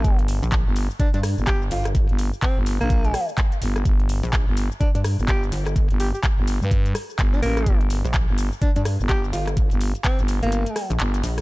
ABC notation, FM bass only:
X:1
M:4/4
L:1/16
Q:"Swing 16ths" 1/4=126
K:Gm
V:1 name="FM bass" clef=bass
G,,,3 z2 G,,,2 z4 G,,,3 z2 | z G,,,2 z2 G,,,2 B,,,3 z4 G,,,2 | G,,,3 z2 G,,,2 z4 G,,,3 z2 | z G,,,2 z2 G,,,2 G,,3 z2 G,,,2 A,,,2 |
G,,,3 z2 G,,,2 z4 G,,,3 z2 | z G,,,2 z2 G,,,2 G,,,2 z3 G,,,2 z2 |]